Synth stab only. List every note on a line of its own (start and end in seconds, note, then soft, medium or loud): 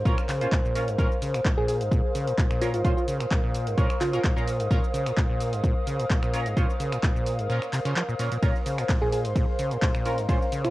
0.06 0.15 C#4 loud
0.06 0.15 F4 medium
0.06 0.15 A#4 loud
0.41 0.47 C#4 medium
0.41 0.47 F4 medium
0.41 0.47 C5 medium
0.75 0.81 C#4 medium
0.75 0.81 F4 medium
0.75 0.81 A#4 medium
0.99 1.05 C#4 medium
0.99 1.05 F4 medium
0.99 1.05 A#4 loud
2.61 2.67 C#4 loud
2.61 2.67 F4 medium
2.61 2.67 A#4 loud
2.85 2.91 C#4 medium
2.85 2.91 F4 medium
2.85 2.91 C5 medium
3.78 3.87 C#4 loud
3.78 3.87 F4 medium
3.78 3.87 A#4 loud
4.13 4.19 C#4 loud
4.13 4.19 F4 medium
4.13 4.19 A#4 loud
4.36 4.42 C#4 medium
4.36 4.42 F4 medium
4.36 4.42 A#4 medium
4.71 4.77 C#4 medium
4.71 4.77 F4 medium
4.71 4.77 A#4 loud
6.33 6.39 C#4 loud
6.33 6.39 F4 medium
6.33 6.39 A#4 loud
6.57 6.63 C#4 medium
6.57 6.63 F4 medium
6.57 6.63 C5 medium
7.50 7.59 C#4 loud
7.50 7.59 F4 medium
7.50 7.59 A#4 loud
7.85 7.91 C#4 medium
7.85 7.91 F4 medium
7.85 7.91 C5 medium
8.19 8.25 C#4 medium
8.19 8.25 F4 medium
8.19 8.25 A#4 medium
8.43 8.49 C#4 medium
8.43 8.49 F4 medium
8.43 8.49 A#4 loud
10.05 10.11 C#4 loud
10.05 10.11 F4 medium
10.05 10.12 A#4 loud
10.29 10.35 C#4 medium
10.29 10.35 F4 medium
10.29 10.35 C5 medium